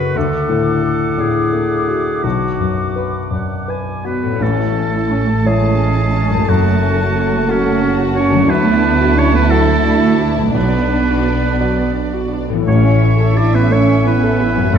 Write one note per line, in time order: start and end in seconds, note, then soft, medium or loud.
0.00 0.11 F#2 soft
0.00 0.18 F#2 soft
0.00 0.18 C#3 soft
0.00 0.18 A3 soft
0.00 0.15 F#4 soft
0.00 1.89 F#4 soft
0.00 0.17 A4 soft
0.00 0.19 B4 medium
0.00 0.18 C#5 soft
0.00 2.20 F#5 soft
0.00 0.11 C#6 soft
0.15 2.21 D2 soft
0.15 2.27 D3 medium
0.15 1.22 A4 medium
0.15 4.04 D6 medium
0.49 1.04 A2 soft
0.49 2.27 A3 soft
0.83 1.39 A4 soft
1.17 1.74 A2 soft
1.17 2.25 G#4 medium
1.17 3.32 D5 soft
1.53 2.10 A3 soft
1.88 2.24 F#4 soft
1.88 4.03 F#4 soft
2.24 4.36 B1 soft
2.24 4.44 B2 soft
2.24 3.32 F#4 soft
2.24 3.23 F#5 soft
2.59 3.18 F#2 soft
2.59 4.44 F#3 soft
2.96 3.54 B4 soft
2.96 3.67 B4 soft
3.31 3.89 F#2 soft
3.31 4.44 D5 soft
3.31 3.71 F#5 soft
3.68 4.26 B4 soft
3.68 4.43 B4 soft
3.68 4.05 G#5 soft
4.04 4.38 B3 soft
4.04 4.41 F#4 soft
4.04 4.43 F#4 soft
4.04 4.44 B4 medium
4.22 6.42 A2 soft
4.27 8.17 C#4 soft
4.31 6.46 E4 soft
4.36 6.42 C#5 soft
4.40 6.44 A1 soft
4.40 6.45 A1 medium
4.40 4.58 E3 soft
4.40 5.47 A3 soft
4.40 4.75 C#4 soft
4.40 5.48 A4 medium
4.40 8.46 A5 soft
4.59 4.76 A3 soft
4.76 4.94 C#4 soft
4.93 5.11 E4 soft
5.11 5.29 C#4 soft
5.29 5.46 A3 soft
5.45 5.63 E3 soft
5.45 6.49 G#3 medium
5.45 6.45 C#4 medium
5.45 6.44 E4 soft
5.45 6.50 G#4 medium
5.45 6.44 C#5 soft
5.64 5.81 A3 soft
5.81 5.98 C#4 soft
5.98 6.15 E4 soft
6.14 6.31 C#4 soft
6.29 8.42 F#2 soft
6.29 6.48 A3 soft
6.34 10.24 A3 soft
6.38 8.38 F#4 soft
6.43 8.49 C#5 soft
6.48 8.45 F#1 medium
6.48 8.45 F#2 soft
6.48 6.64 F#3 soft
6.48 7.48 F#3 medium
6.48 7.49 A3 medium
6.48 7.51 F#4 medium
6.65 6.82 A3 soft
6.82 6.99 C#4 soft
6.99 7.16 F#4 soft
7.16 7.33 C#4 soft
7.33 7.49 A3 soft
7.48 8.14 C#3 medium
7.48 7.66 F#3 soft
7.48 7.99 C#4 medium
7.48 8.45 F#4 soft
7.48 8.49 F#4 medium
7.48 8.45 A4 soft
7.66 7.82 A3 soft
7.83 8.00 C#4 soft
7.99 8.16 F#4 soft
8.15 8.49 C#4 medium
8.15 8.32 C#4 medium
8.15 8.51 C#5 medium
8.30 10.48 D3 medium
8.30 8.49 A3 soft
8.34 10.40 F#3 soft
8.39 12.29 F#4 soft
8.44 10.49 D5 soft
8.48 10.50 D2 medium
8.48 10.51 D2 medium
8.48 8.65 F#3 medium
8.48 9.17 B3 medium
8.48 8.82 D4 medium
8.48 10.50 E4 medium
8.48 9.20 B4 medium
8.48 10.51 A5 medium
8.66 8.83 A3 medium
8.83 9.00 D4 medium
9.01 9.18 F#4 medium
9.17 9.34 C#4 medium
9.17 9.34 D4 medium
9.17 9.34 C#5 medium
9.33 9.51 A3 soft
9.33 9.51 B3 medium
9.33 9.51 B4 medium
9.50 9.68 F#3 medium
9.50 10.55 A3 medium
9.50 10.51 F#4 soft
9.50 10.26 A4 medium
9.50 10.51 A4 soft
9.69 9.86 A3 soft
9.86 10.03 D4 soft
10.03 10.20 F#4 soft
10.20 10.37 D4 soft
10.36 12.60 B2 soft
10.36 10.55 A3 soft
10.41 12.63 F#3 soft
10.45 12.65 D4 soft
10.50 12.67 D5 soft
10.54 12.42 B1 medium
10.54 12.62 B1 soft
10.54 10.71 F#3 medium
10.54 12.31 B3 medium
10.54 12.13 D4 medium
10.54 12.27 B4 medium
10.54 12.42 D5 medium
10.74 10.91 B3 soft
10.91 11.08 D4 soft
11.09 11.26 F#4 soft
11.27 11.44 D4 soft
11.45 11.62 B3 soft
11.61 11.79 F#3 soft
11.61 12.63 F#4 soft
11.61 12.63 D5 soft
11.79 11.96 B3 soft
11.95 12.13 D4 soft
12.14 12.32 F#4 soft
12.31 12.49 D4 soft
12.48 14.68 A2 soft
12.48 12.67 B3 soft
12.53 14.78 E3 soft
12.57 14.72 E4 soft
12.62 12.83 C#4 soft
12.62 14.68 C#5 soft
12.62 14.70 E5 soft
12.66 14.70 A1 medium
12.66 14.70 A1 soft
12.66 12.83 A3 soft
12.66 13.33 C#4 medium
12.66 13.39 C#5 medium
12.84 13.02 C#4 soft
13.01 13.20 E4 soft
13.19 13.37 A4 soft
13.36 13.55 D4 medium
13.36 13.54 E4 soft
13.36 13.56 D5 medium
13.54 13.72 B3 medium
13.54 13.72 C#4 soft
13.54 13.73 B4 medium
13.70 13.89 A3 soft
13.70 14.69 C#4 medium
13.70 14.06 C#4 medium
13.70 14.70 A4 soft
13.70 14.06 C#5 medium
13.70 14.70 C#5 soft
13.89 14.06 C#4 soft
14.06 14.74 B3 medium
14.06 14.23 E4 soft
14.06 14.77 B4 medium
14.23 14.40 A4 soft
14.40 14.57 E4 medium
14.55 14.78 F#2 soft
14.55 14.74 C#4 soft
14.65 14.78 F#4 soft
14.69 14.78 A3 medium
14.69 14.78 C#4 medium
14.69 14.78 C#5 soft
14.69 14.78 F#5 medium
14.73 14.78 F#1 medium
14.73 14.78 F#2 medium
14.73 14.78 A3 medium